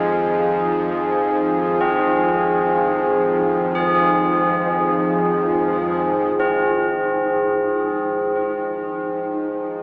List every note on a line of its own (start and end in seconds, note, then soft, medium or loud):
0.00 6.38 F2 medium
0.00 6.38 F3 medium
0.00 6.38 D#4 medium
0.00 6.39 F4 medium
0.00 9.83 G#4 medium
1.81 6.38 C4 medium
3.75 9.83 G#4 medium
6.40 9.83 F2 medium
6.40 9.83 F3 medium
6.40 9.83 C4 medium
6.40 9.83 D#4 medium
7.88 9.83 F4 medium